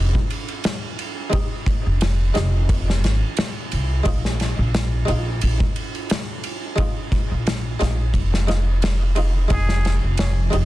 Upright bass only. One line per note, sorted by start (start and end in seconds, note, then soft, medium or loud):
0.00 0.13 F1 medium
1.87 2.33 F1 medium
2.36 3.05 F1 medium
3.05 3.20 G#1 medium
3.73 4.02 C2 medium
4.06 4.55 A#1 medium
4.59 5.05 A#1 medium
5.09 5.39 A#1 medium
5.43 5.59 A#1 medium
7.31 7.78 A#1 medium
7.81 8.11 A#1 medium
8.14 9.48 F1 medium
9.51 10.00 F1 medium
10.04 10.50 F1 medium
10.54 10.65 F1 medium